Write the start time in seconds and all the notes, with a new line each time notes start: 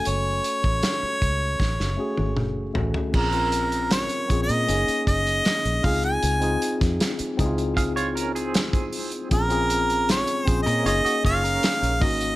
Already playing: A3 C#4 F#4 A4
0.05 F#1 C#5, closed hi-hat
0.44 closed hi-hat
0.64 A1, kick
0.83 snare, closed hi-hat
1.03 muted fingered electric bass stroke
1.22 C#2, kick, closed hi-hat
1.60 A1, kick, snare
1.80 F#1, snare
1.97 A3 C#4 F#4 G#4
2.17 G#1, high tom
2.37 F#1, mid tom
2.74 A1 A3 C#4 F#4 A4, floor tom
2.94 floor tom
3.12 A#1 C4 C#4 F4 G#4 A#4, kick, crash
3.31 C4 C#4 F4 A#4, closed hi-hat
3.52 closed hi-hat
3.72 closed hi-hat
3.91 C#5, snare, closed hi-hat
4.09 closed hi-hat
4.28 A#1 C4 C#4 F4 G#4, kick, closed hi-hat
4.43 D#5
4.49 A#2, closed hi-hat
4.67 F#1 A#3 C#4 D#4 G#4, closed hi-hat
4.88 muted fingered electric bass stroke, closed hi-hat
5.07 F#1 D#5, kick, closed hi-hat
5.27 closed hi-hat
5.45 snare, closed hi-hat
5.65 A#1, closed hi-hat
5.82 C#2 C4 D#4 F4 G#4 F5, kick, open hi-hat
6.03 G#5, closed hi-hat
6.23 C#2, closed hi-hat
6.40 C4 D#4 F4 G#4, closed hi-hat
6.62 closed hi-hat
6.81 F2, kick, snare, closed hi-hat
7.00 snare, closed hi-hat
7.19 muted fingered electric bass stroke, closed hi-hat
7.37 C#2 C4 D#4 E4 G#4, kick, closed hi-hat
7.46 F4
7.58 closed hi-hat
7.77 G#4 F5, kick, closed hi-hat
7.96 F4 C#5, closed hi-hat
8.15 C#4 A#4, closed hi-hat
8.35 C4 G#4, closed hi-hat
8.54 snare, closed hi-hat
8.73 kick, closed hi-hat
8.93 open hi-hat
9.12 closed hi-hat
9.29 A#1 C4 C#4 F4 G#4, kick, closed hi-hat
9.33 A#4
9.48 C4 C#4 F4 G#4, closed hi-hat
9.70 closed hi-hat
9.90 closed hi-hat
10.09 C#5, snare, closed hi-hat
10.27 closed hi-hat
10.45 A#1 C4 C#4 F4 G#4 C5, kick, closed hi-hat
10.62 A#4 D#5
10.67 A#2 C#4, closed hi-hat
10.83 F#1 A#3 C#4 D#4 F4 G#4 C#5, closed hi-hat
10.87 D#5
11.05 F#4 D#5, closed hi-hat
11.24 F#1 F4 C#5 F5, kick, closed hi-hat
11.44 C#4 A#4, closed hi-hat
11.63 snare, closed hi-hat
11.83 A#1, closed hi-hat
12.00 G#1 A#3 C#4 D#4 F#4 D#5, kick, open hi-hat
12.21 closed hi-hat